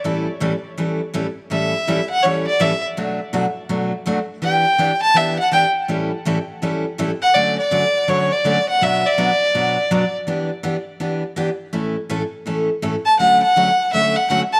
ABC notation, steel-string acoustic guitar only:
X:1
M:4/4
L:1/16
Q:"Swing" 1/4=164
K:D
V:1 name="Steel-string acoustic guitar"
[A,,E,G,CEA]2 z2 [A,,E,G,CEA] z3 [A,,E,G,CEA]2 z2 [A,,E,G,CEA] z3 | [A,,E,G,CEA]2 z2 [A,,E,G,CEA] z3 [A,,E,G,CEA]2 z2 [A,,E,G,CEA] z3 | [B,,F,A,DF]2 z2 [B,,F,A,DF] z3 [B,,F,A,DF]2 z2 [B,,F,A,DF] z3 | [E,B,DG]2 z2 [E,B,DG] z3 [E,B,DG]2 z2 [E,B,DG] z3 |
[A,,E,G,CEA]2 z2 [A,,E,G,CEA] z3 [A,,E,G,CEA]2 z2 [A,,E,G,CEA] z3 | [D,F,A,CF]2 z2 [D,F,A,CF] z3 [D,F,A,CF]2 z2 [D,F,A,CF] z3 | [B,,F,B,DFc]2 z2 [B,,F,B,DFc] z3 [B,,F,B,DFc]2 z2 [B,,F,B,DFc] z3 | [E,B,DG]2 z2 [E,B,DG] z3 [E,B,DG]2 z2 [E,B,DG] z3 |
[A,,E,A,CEA]2 z2 [A,,E,A,CEA] z3 [A,,E,A,CEA]2 z2 [A,,E,A,CEA] z3 | [D,F,A,CF]2 z2 [D,F,A,CF] z3 [D,F,A,CF]2 z2 [D,F,A,CF] z3 |]